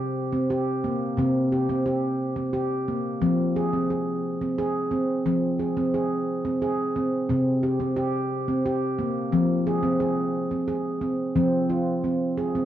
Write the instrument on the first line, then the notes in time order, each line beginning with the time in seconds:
handpan
Already playing: C3 G4
0.32 C4
0.50 G4
0.84 A#3
1.17 C3 C4
1.52 G4
1.69 C4
1.86 G4
2.36 C4
2.53 G4
2.88 A#3
3.22 F3 C4
3.56 G#4
3.73 C4
3.90 G#4
4.41 C4
4.58 G#4
4.91 C4
5.26 F3 C4
5.59 G#4
5.77 C4
5.94 G#4
6.45 C4
6.62 G#4
6.96 C4
7.29 C3 C4
7.63 G4
7.80 C4
7.96 G4
8.48 C4
8.66 G4
8.99 A#3
9.33 F3 C4
9.67 G#4
9.83 C4
10.00 G#4
10.51 C4
10.68 G#4
11.01 C4
11.36 F3 C4
11.70 F4
12.04 C4
12.37 G#4
12.55 C4